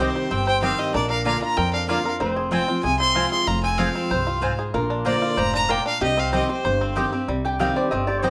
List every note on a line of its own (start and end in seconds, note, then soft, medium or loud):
0.00 0.28 C3 medium
0.00 0.29 D#3 medium
0.00 0.29 G3 loud
0.00 0.30 C4 loud
0.00 0.14 G4 medium
0.00 1.02 G4 medium
0.00 0.30 G4 loud
0.00 0.44 C5 medium
0.00 0.33 C5 medium
0.00 0.09 G5 loud
0.16 0.59 G4 medium
0.31 0.70 G1 medium
0.31 0.91 G2 medium
0.31 0.61 C4 medium
0.31 0.47 G5 loud
0.47 0.91 C5 medium
0.47 0.62 G5 medium
0.62 0.92 D#3 medium
0.62 0.93 G3 medium
0.62 0.72 C4 medium
0.62 0.94 C4 medium
0.62 0.93 C4 medium
0.62 0.72 G4 loud
0.62 0.93 G4 loud
0.62 0.72 D#5 medium
0.62 0.80 F5 medium
0.62 0.72 G5 loud
0.79 0.94 G4 medium
0.79 0.94 D#5 medium
0.94 1.34 A#1 medium
0.94 1.55 A#2 medium
0.94 1.25 D4 medium
0.94 2.02 A#4 loud
0.94 1.10 D5 loud
1.10 1.54 A#4 medium
1.10 1.25 F5 loud
1.25 1.41 D3 medium
1.25 1.35 A#3 medium
1.25 1.41 A#3 medium
1.25 1.71 D4 medium
1.25 1.42 D4 loud
1.25 1.35 F4 loud
1.25 1.40 F4 medium
1.25 1.35 D5 medium
1.25 1.41 F5 medium
1.25 1.35 A#5 loud
1.41 1.57 D4 soft
1.41 1.56 F4 medium
1.41 1.89 F4 medium
1.41 1.58 A#5 loud
1.57 2.17 F2 medium
1.57 1.97 F2 medium
1.57 2.02 A#4 medium
1.57 1.73 G5 loud
1.73 2.18 D4 medium
1.73 1.88 F5 medium
1.88 2.04 D3 medium
1.88 1.98 A#3 loud
1.88 2.05 A#3 medium
1.88 2.05 D4 medium
1.88 1.98 F4 medium
1.88 2.68 F4 medium
1.88 2.03 F4 loud
1.88 1.99 D5 medium
1.88 2.11 F5 medium
1.88 1.99 A#5 loud
2.04 2.21 D4 soft
2.04 2.19 F4 medium
2.04 2.21 A#4 medium
2.20 2.60 F1 medium
2.20 2.81 F2 medium
2.20 2.51 C4 medium
2.20 4.70 C5 loud
2.36 2.81 G#4 medium
2.51 2.67 F3 medium
2.51 2.68 G#3 medium
2.51 2.61 C4 medium
2.51 2.97 C4 medium
2.51 2.68 C4 loud
2.51 2.62 F4 medium
2.51 2.66 F4 medium
2.51 2.62 C5 loud
2.51 2.82 G5 medium
2.51 2.62 G#5 loud
2.68 2.84 C4 soft
2.68 2.83 F4 medium
2.68 3.15 F4 medium
2.83 3.23 C2 medium
2.83 3.44 C3 medium
2.83 3.29 G#4 medium
2.83 2.99 G#5 loud
2.99 3.44 C4 medium
2.99 3.29 C6 loud
3.14 3.45 F3 medium
3.14 3.46 G#3 medium
3.14 3.24 C4 medium
3.14 3.46 C4 medium
3.14 3.25 F4 loud
3.14 3.47 F4 medium
3.14 3.46 F4 medium
3.14 3.25 C5 loud
3.14 3.25 G#5 loud
3.31 3.76 G#4 medium
3.31 3.49 C6 loud
3.47 3.87 F1 medium
3.47 4.08 F2 medium
3.47 4.26 F4 medium
3.47 3.63 A#5 loud
3.64 3.94 C4 medium
3.64 3.79 G#5 loud
3.78 4.09 F3 medium
3.78 4.09 G#3 medium
3.78 3.88 C4 medium
3.78 4.10 C4 medium
3.78 3.88 F4 loud
3.78 4.10 F4 loud
3.78 4.24 G#4 medium
3.78 3.88 C5 medium
3.78 4.58 F5 medium
3.78 3.88 G#5 loud
3.95 4.39 C4 medium
4.10 4.50 C2 medium
4.10 4.41 G2 medium
4.10 4.41 C5 medium
4.27 4.71 F4 medium
4.41 4.72 G#2 medium
4.41 4.51 C4 medium
4.41 4.52 F4 medium
4.41 4.52 C5 medium
4.41 4.74 C5 medium
4.41 4.52 G#5 loud
4.59 4.74 G#4 medium
4.74 5.13 A#1 medium
4.74 5.34 A#2 medium
4.74 5.19 F4 medium
4.74 5.97 A#4 medium
4.90 5.34 D4 medium
5.05 5.36 D3 medium
5.05 5.15 A#3 medium
5.05 5.36 A#3 medium
5.05 5.36 D4 loud
5.05 5.15 F4 medium
5.05 5.37 F4 medium
5.05 5.36 C5 medium
5.05 5.15 D5 loud
5.05 5.40 D5 loud
5.05 5.15 A#5 loud
5.22 5.66 F4 medium
5.37 5.77 F1 medium
5.37 5.68 G#2 medium
5.37 5.82 C5 medium
5.37 5.54 A#5 loud
5.54 5.84 D4 medium
5.54 5.72 A#5 loud
5.69 6.00 A#2 medium
5.69 5.78 A#3 medium
5.69 5.79 F4 medium
5.69 6.01 A#4 medium
5.69 5.79 D5 loud
5.69 5.86 G5 loud
5.69 5.79 A#5 medium
5.86 6.01 D4 medium
5.86 6.01 F5 loud
6.01 6.40 C2 medium
6.01 6.62 C3 medium
6.01 6.46 G4 medium
6.01 7.09 G4 medium
6.01 6.21 D#5 loud
6.17 6.61 C4 medium
6.17 6.34 F5 medium
6.32 6.48 D#3 medium
6.32 6.49 G3 medium
6.32 6.42 C4 medium
6.32 6.49 C4 loud
6.32 6.42 G4 medium
6.32 6.48 G4 loud
6.32 6.64 C5 medium
6.32 6.42 D#5 medium
6.32 6.49 D#5 medium
6.32 6.42 G5 loud
6.49 6.93 G4 medium
6.49 6.64 G4 medium
6.49 6.94 C5 medium
6.65 7.04 G1 medium
6.65 7.25 G2 medium
6.65 7.09 C5 medium
6.81 7.11 C4 medium
6.96 7.12 D#3 medium
6.96 7.12 G3 medium
6.96 7.05 C4 medium
6.96 7.13 C4 medium
6.96 7.05 G4 medium
6.96 7.28 G4 medium
6.96 7.11 G4 loud
6.96 7.06 D#5 medium
6.96 7.06 G5 loud
7.12 7.28 C4 medium
7.12 7.28 C4 soft
7.12 7.27 G4 medium
7.28 7.67 C2 medium
7.28 7.89 C3 medium
7.28 8.30 G3 medium
7.45 7.60 G4 medium
7.45 7.60 G5 medium
7.59 7.90 D#3 medium
7.59 7.90 G3 medium
7.59 7.69 C4 loud
7.59 7.91 C4 medium
7.59 7.69 G4 medium
7.59 8.08 G4 medium
7.59 7.91 G4 loud
7.59 7.69 D#5 medium
7.59 7.76 F5 medium
7.59 7.70 G5 loud
7.76 8.23 C5 medium
7.76 7.90 D5 medium
7.91 8.30 G1 medium
7.91 8.30 G2 medium
7.91 8.30 C4 medium
7.91 8.07 D#5 medium
8.07 8.30 G4 medium
8.07 8.22 D5 medium
8.22 8.30 D#3 medium
8.22 8.30 G3 medium
8.22 8.30 C4 medium
8.22 8.30 G4 medium
8.22 8.30 C5 medium
8.22 8.30 D#5 medium
8.22 8.30 G5 loud